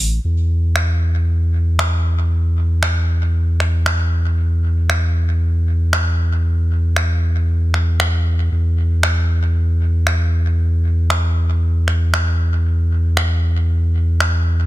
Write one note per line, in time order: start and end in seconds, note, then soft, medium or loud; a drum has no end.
0.00 0.19 A1 loud
0.24 8.49 E2 medium
0.76 finger snap medium
1.79 finger snap medium
2.83 finger snap medium
3.60 finger snap soft
3.86 finger snap medium
4.90 finger snap medium
5.93 finger snap medium
6.96 finger snap medium
7.74 finger snap soft
8.00 finger snap medium
8.51 14.66 E2 medium
9.03 finger snap medium
10.07 finger snap medium
11.10 finger snap medium
11.88 finger snap soft
12.14 finger snap medium
13.17 finger snap medium
14.20 finger snap medium